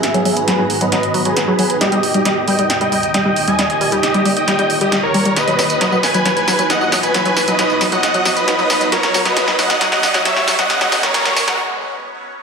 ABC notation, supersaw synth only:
X:1
M:4/4
L:1/16
Q:1/4=135
K:D#phr
V:1 name="Supersaw synth"
[Ge] [Ge]2 [GB]4 [Bd]4 [GB]2 [GB]3 | [=Gd]3 [Gd]3 [d=g]3 [dg]3 [dg]3 [d^g]- | [dg] [dg]2 [=Gd]4 [d=g]4 [Gd]2 [Ac]3 | [Bd]3 [Bd]3 [Bg]3 [Bg]3 [df]3 [Bg]- |
[Bg] [Bg]2 [Bd]4 [df]4 [Bd]2 [Bd]3 | [Ac]3 [Bd]3 [df]3 [df]3 [ce]3 [df]- | [df] [df]2 [Ac]4 [FA] z8 |]